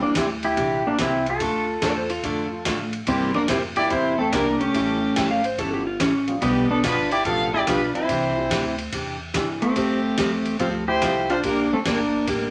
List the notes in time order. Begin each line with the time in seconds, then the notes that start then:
0.01 E3 G3 A#3 C4 D4 E4, muted upright bass stroke
0.15 D2 C3 E3 C4 D4 E4 G4, kick, snare, hi-hat pedal, ride
0.43 E4 G4, ride
0.57 A#1 C3 E3 D4 G4, kick, ride
0.87 A#3 D4
0.98 C2 C3 E3 G3 C4 D4 E4 G4, kick, snare, hi-hat pedal, ride
1.26 F4 A4, ride
1.40 D2 D3 A3 D4 F4 A4, kick, ride
1.82 E2 D3 A3 D4 F4 A4 A#4 D5, kick, snare, hi-hat pedal, ride
1.96 A4 C5
2.10 F4, ride
2.23 F2 D3 A3 D4 F4 A4, kick, ride
2.65 A2 D3 F3 A3 D4 F4 A4, kick, snare, hi-hat pedal, ride
2.93 ride
3.07 G2 C3 G3 A#3 C4 E4 G4, kick, ride
3.21 snare
3.34 A#3 D4 A#4, snare
3.48 F2 C3 G3 A#3 C4 E4 G4 C5, kick, snare, hi-hat pedal, ride
3.76 E3 G3 A#3 C4 E4 G4 D5, ride
3.90 E2 C3 G3 A#3 C4 E4 G4 C5, kick, ride
4.18 A3 C4 A4
4.32 C2 C3 E3 G3 A#3 C4 D4 E4 G4 A#4, kick, snare, hi-hat pedal, ride
4.60 A3 C#4 G4, ride
4.74 A1 E3 G3 A3 C#4 E4 A4, kick, ride
5.16 G#1 E3 G3 C#4 E4 A4 G5, kick, snare, hi-hat pedal, ride
5.31 F5
5.44 C5, ride
5.58 G1 E3 G3 C#4 E4 A4, kick, ride
5.73 G4
5.87 F4
6.00 A1 E3 G3 C#4 E4 A4, kick, snare, hi-hat pedal, ride
6.27 F3 G3 B3 D4 F4, ride
6.42 B1 B2 F3 G3 B3 D4 G4 B4, kick, ride
6.70 B3 D4 A4
6.83 G1 B2 F3 B3 D4 F4 G4 B4, kick, snare, hi-hat pedal, ride
7.11 E4 G4 D5, ride
7.25 A1 B2 F3 B3 D4 F4 G4 A4 B4 F5, kick, ride
7.53 E4 G4 D5
7.67 B1 B2 F3 G3 B3 D4 F4 G4 B4, kick, snare, hi-hat pedal, ride
7.95 C4 E4 C5, ride
8.09 C2 C3 E3 D4 G4, kick, ride
8.36 E3 G3 C4 D4 E4
8.50 D2 C3 E3 D4 G4, kick, snare, hi-hat pedal, ride
8.79 ride
8.92 E2 C3 E3 D4 G4, kick, ride
9.34 G2 C3 E3 G3 C4 D4 E4 G4, kick, snare, hi-hat pedal, ride
9.62 A3 C4 G4, muted upright bass stroke, ride
9.76 F2 F3 G3 C4 G4 A4, kick, ride
10.18 E2 F3 G3 C4 G4 A4, kick, snare, hi-hat pedal, ride
10.46 ride
10.60 D2 F3 G3 C4 F4 G4 A4 C5, kick, ride
10.88 E4 G4 C5
11.01 C2 F3 G3 A3 C4 F4 G4 A4, kick, snare, hi-hat pedal, ride
11.30 D4 F4 C5, ride
11.43 A#1 D3 G3 A#3 D4 G4 A#4, kick, ride
11.72 A3 C4 A4, muted upright bass stroke
11.85 G1 D3 G3 A#3 D4 G4 A#4, kick, snare, hi-hat pedal, ride
12.27 A1 D3 G3 A#3 D4 G4, kick, ride